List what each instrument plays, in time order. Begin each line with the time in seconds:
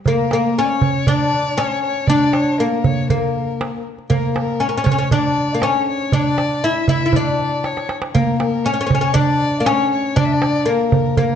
0.06 oud A#3, violin A#4, darbuka dum
0.31 oud A#3, darbuka tek
0.59 oud C#4, violin C#5
0.64 violin D5
0.70 violin C#5
0.81 darbuka dum
0.95 darbuka ka
1.07 oud D4, violin D5, darbuka dum
1.56 oud C#4, violin C#5, darbuka tek
1.83 violin C#5
1.95 darbuka ka
2.07 oud D4, violin D5, darbuka dum
2.33 violin C#5, darbuka tek
2.58 oud A#3, violin A#4
2.84 violin C#5, darbuka dum
2.97 darbuka ka
3.10 oud A#3, violin A#4, darbuka dum
3.61 darbuka tek
3.98 darbuka ka
4.10 oud A#3, violin A#4, darbuka dum
4.36 violin A#4, darbuka tek
4.60 oud C#4, violin C#5
4.68 oud C#4, violin A#4
4.77 oud C#4, violin C#5
4.84 oud C#4, darbuka dum
4.92 oud C#4
4.98 oud C#4, darbuka ka
5.11 oud D4, violin D5, darbuka dum
5.54 oud A#3
5.62 oud C#4, violin C#5, darbuka tek
5.88 violin C#5
6.00 darbuka ka
6.12 oud D4, violin D5, darbuka dum
6.25 darbuka ka
6.38 darbuka tek
6.50 darbuka ka
6.64 oud E4, violin E5
6.88 oud E4, violin E5, darbuka dum
7.01 darbuka ka
7.06 oud E4
7.13 oud D4, violin D5, darbuka dum
7.39 darbuka ka
7.64 violin C#5, darbuka tek
7.77 darbuka ka
7.89 darbuka tek
8.02 darbuka ka
8.15 oud A#3, violin A#4, darbuka dum
8.38 violin A#4, darbuka tek
8.64 oud C#4, violin C#5
8.74 oud C#4
8.81 oud C#4
8.87 oud C#4, darbuka dum
8.95 oud C#4
9.01 oud C#4, darbuka ka
9.14 oud D4, violin D5, darbuka dum
9.60 oud A#3
9.65 oud C#4, violin C#5, darbuka tek
9.92 violin C#5
10.05 darbuka ka
10.16 oud D4, violin D5, darbuka dum
10.25 violin E5
10.32 violin D5
10.42 darbuka tek
10.66 oud A#3, violin A#4
10.92 darbuka dum
11.05 darbuka ka
11.17 oud A#3, violin A#4, darbuka dum